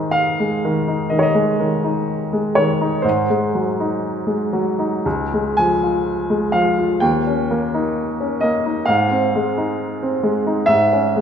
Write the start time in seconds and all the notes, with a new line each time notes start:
Already playing: G#2 D#3 G#3 D#4 C5
0.11 F5
0.40 G#3
0.65 D#3
0.88 D#4
1.10 D#3 D#5
1.19 C#5 D#5
1.35 G#3
1.60 D#3
1.84 D#4
2.33 G#3
2.55 D#3 C#5
2.81 D#4
3.02 G#2 C5
3.30 G#3
3.55 F#3
3.80 D#4
4.27 G#3
4.53 F#3
4.79 D#4
5.06 C#2
5.33 G#3
5.57 F3 G#5
5.83 F4
6.30 G#3
6.52 F3 F5
6.78 F4
7.00 D#2 G5
7.27 C#4
7.51 A#3
7.74 D#4
8.20 C#4
8.41 A#3 D#5
8.66 D#4
8.86 G#2 F5
9.11 C4
9.35 G#3
9.58 D#4
10.03 C4
10.23 G#3
10.47 D#4
10.66 G#2 E5
10.93 C#4
11.16 G#3